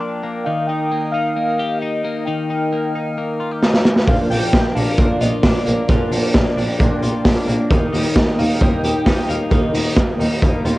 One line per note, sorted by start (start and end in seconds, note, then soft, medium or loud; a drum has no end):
0.00 0.46 F3 medium
0.00 0.23 A#3 medium
0.00 0.50 D4 medium
0.00 0.50 F4 medium
0.00 0.42 A#4 medium
0.00 0.43 D5 medium
0.00 4.03 G5 medium
0.00 0.42 D6 medium
0.23 0.91 A#3 medium
0.44 2.26 D#3 medium
0.44 10.78 A#4 medium
0.44 4.04 D#5 medium
0.44 0.68 F5 loud
0.44 2.25 D#6 medium
0.67 1.13 D#4 medium
0.67 1.11 G5 loud
0.92 1.36 A#3 medium
1.12 1.81 D#4 medium
1.12 1.80 F5 loud
1.36 2.04 A#3 medium
1.59 3.40 G4 medium
1.79 2.49 D#4 medium
1.79 2.26 D#5 medium
2.04 2.72 A#3 medium
2.24 4.07 D#3 medium
2.24 3.61 G5 loud
2.24 4.06 F6 loud
2.50 2.94 D#4 medium
2.73 3.17 A#3 medium
2.95 3.62 D#4 medium
3.18 3.85 A#3 medium
3.40 3.52 F4 medium
3.52 4.12 G4 medium
3.63 4.12 D#4 medium
3.63 snare medium
3.74 snare medium
3.85 4.52 A#3 medium
3.85 snare loud
3.96 snare loud
4.06 4.15 A#1 loud
4.06 4.30 A#2 medium
4.06 4.30 D3 medium
4.06 5.88 F3 medium
4.06 4.30 F3 medium
4.06 5.84 A#3 medium
4.06 4.31 A#3 medium
4.06 5.85 D4 medium
4.06 4.29 D4 medium
4.06 5.85 F4 medium
4.06 5.86 A#4 medium
4.06 7.67 D5 medium
4.06 4.18 F5 loud
4.06 5.87 F5 medium
4.06 7.67 D6 medium
4.06 kick loud
4.06 open hi-hat medium
4.30 4.38 A#1 medium
4.30 4.98 F3 medium
4.30 4.99 A#3 medium
4.30 4.98 D4 medium
4.30 4.74 D4 medium
4.30 4.76 G5 loud
4.30 hi-hat pedal medium
4.30 open hi-hat medium
4.53 4.61 A#1 medium
4.53 4.97 A#3 medium
4.53 kick loud
4.53 snare loud
4.75 4.83 A#1 loud
4.75 5.42 D4 medium
4.75 5.23 F5 loud
4.75 hi-hat pedal medium
4.75 open hi-hat medium
4.97 5.06 A#1 loud
4.97 5.21 A#2 medium
4.97 5.21 D3 loud
4.97 5.21 F3 loud
4.97 5.66 A#3 medium
4.97 5.21 A#3 medium
4.97 5.19 D4 medium
4.97 kick loud
4.97 hi-hat pedal medium
4.97 open hi-hat medium
5.20 5.29 A#1 loud
5.20 5.43 F3 soft
5.20 5.44 A#3 medium
5.20 5.43 D4 medium
5.20 7.02 F4 medium
5.20 5.46 D#5 loud
5.20 hi-hat pedal medium
5.20 open hi-hat medium
5.43 5.51 A#1 loud
5.43 5.88 D3 medium
5.43 5.89 F3 medium
5.43 5.90 A#3 medium
5.43 6.10 D4 medium
5.43 5.90 D4 medium
5.43 5.89 D5 medium
5.43 kick loud
5.43 snare loud
5.43 hi-hat pedal medium
5.43 open hi-hat medium
5.66 5.75 A#1 loud
5.66 6.34 A#3 medium
5.66 hi-hat pedal medium
5.66 open hi-hat medium
5.87 5.97 A#1 loud
5.87 6.11 A#2 medium
5.87 6.12 D3 medium
5.87 7.70 F3 medium
5.87 6.12 F3 medium
5.87 7.66 A#3 medium
5.87 6.11 A#3 loud
5.87 7.66 D4 medium
5.87 6.10 D4 medium
5.87 7.66 F4 medium
5.87 7.67 A#4 medium
5.87 7.21 D5 loud
5.87 7.69 G5 medium
5.87 kick loud
5.87 hi-hat pedal medium
5.87 open hi-hat medium
6.11 6.19 A#1 medium
6.11 6.79 F3 medium
6.11 6.80 A#3 medium
6.11 6.79 D4 medium
6.11 6.56 D4 medium
6.11 hi-hat pedal medium
6.11 open hi-hat medium
6.34 6.42 A#1 loud
6.34 6.80 A#3 medium
6.34 kick loud
6.34 snare loud
6.34 open hi-hat medium
6.57 6.65 A#1 medium
6.57 7.24 D4 medium
6.57 hi-hat pedal medium
6.57 open hi-hat medium
6.79 6.88 A#1 loud
6.79 7.02 A#2 loud
6.79 7.03 D3 loud
6.79 7.03 F3 loud
6.79 7.47 A#3 medium
6.79 7.02 A#3 loud
6.79 7.01 D4 medium
6.79 kick loud
6.79 hi-hat pedal medium
6.79 open hi-hat medium
7.02 7.11 A#1 medium
7.02 7.24 F3 medium
7.02 7.25 A#3 medium
7.02 7.25 D4 medium
7.02 7.75 F4 medium
7.02 hi-hat pedal medium
7.02 open hi-hat medium
7.24 7.33 A#1 loud
7.24 7.47 D3 medium
7.24 7.48 F3 medium
7.24 7.48 A#3 medium
7.24 7.75 D4 medium
7.24 7.46 D4 medium
7.24 kick loud
7.24 snare loud
7.24 hi-hat pedal medium
7.24 open hi-hat medium
7.47 7.56 A#1 loud
7.47 7.72 F3 medium
7.47 8.15 A#3 medium
7.47 7.71 A#3 medium
7.47 7.70 D4 medium
7.47 hi-hat pedal medium
7.47 open hi-hat medium
7.70 7.78 D#2 loud
7.70 9.50 D#3 medium
7.70 7.93 D#3 medium
7.70 7.94 G3 loud
7.70 9.48 A#3 medium
7.70 7.93 A#3 loud
7.70 9.48 D#4 medium
7.70 7.92 D#4 loud
7.70 9.49 G4 medium
7.70 9.49 A#4 medium
7.70 10.78 D#5 medium
7.70 10.78 G5 medium
7.70 10.78 D#6 medium
7.70 kick loud
7.70 hi-hat pedal medium
7.70 open hi-hat medium
7.92 8.01 D#2 loud
7.92 8.60 G3 medium
7.92 8.61 A#3 medium
7.92 8.38 D#4 medium
7.92 8.61 D#4 medium
7.92 hi-hat pedal medium
7.92 open hi-hat medium
8.16 8.24 D#2 medium
8.16 8.61 A#3 medium
8.16 8.40 D#5 medium
8.16 kick loud
8.16 snare loud
8.38 8.46 D#2 medium
8.38 9.05 D#4 medium
8.38 8.64 F5 loud
8.38 hi-hat pedal medium
8.38 open hi-hat medium
8.61 8.69 D#2 loud
8.61 8.83 D#3 medium
8.61 8.84 G3 medium
8.61 9.29 A#3 medium
8.61 8.83 A#3 loud
8.61 8.82 D#4 loud
8.61 9.31 G5 loud
8.61 kick loud
8.61 hi-hat pedal medium
8.61 open hi-hat medium
8.83 8.91 D#2 medium
8.83 9.06 G3 medium
8.83 9.06 A#3 medium
8.83 9.06 D#4 medium
8.83 10.64 G4 medium
8.83 hi-hat pedal medium
8.83 open hi-hat medium
9.06 9.14 D#2 loud
9.06 9.49 D#3 medium
9.06 9.50 G3 medium
9.06 9.52 A#3 medium
9.06 9.73 D#4 medium
9.06 9.51 D#4 medium
9.06 kick loud
9.06 snare loud
9.06 hi-hat pedal medium
9.06 open hi-hat medium
9.28 9.36 D#2 medium
9.28 9.97 A#3 medium
9.28 9.53 F5 loud
9.28 hi-hat pedal medium
9.28 open hi-hat medium
9.50 9.59 D#2 loud
9.50 9.74 D#3 medium
9.50 10.78 D#3 medium
9.50 9.74 G3 medium
9.50 10.78 A#3 medium
9.50 9.74 A#3 medium
9.50 10.78 D#4 medium
9.50 9.72 D#4 medium
9.50 10.78 G4 medium
9.50 10.78 A#4 medium
9.50 9.97 D#5 medium
9.50 kick loud
9.50 hi-hat pedal medium
9.50 open hi-hat medium
9.73 9.82 D#2 medium
9.73 10.20 G3 medium
9.73 10.19 A#3 medium
9.73 10.17 D#4 medium
9.73 10.19 D#4 medium
9.73 hi-hat pedal medium
9.73 open hi-hat medium
9.97 10.05 D#2 medium
9.97 10.42 A#3 medium
9.97 kick loud
9.97 snare loud
10.18 10.27 D#2 loud
10.18 10.40 G3 soft
10.18 10.41 A#3 medium
10.18 10.42 D#4 medium
10.18 10.78 D#4 medium
10.18 hi-hat pedal medium
10.18 open hi-hat medium
10.41 10.50 D#2 medium
10.41 10.64 D#3 loud
10.41 10.65 G3 medium
10.41 10.64 A#3 loud
10.41 10.78 A#3 medium
10.41 10.63 D#4 loud
10.41 kick loud
10.41 hi-hat pedal medium
10.41 open hi-hat medium
10.64 10.73 D#2 loud
10.64 10.78 G3 medium
10.64 10.78 A#3 medium
10.64 10.78 D#4 medium
10.64 10.77 F4 medium
10.64 hi-hat pedal medium
10.64 open hi-hat medium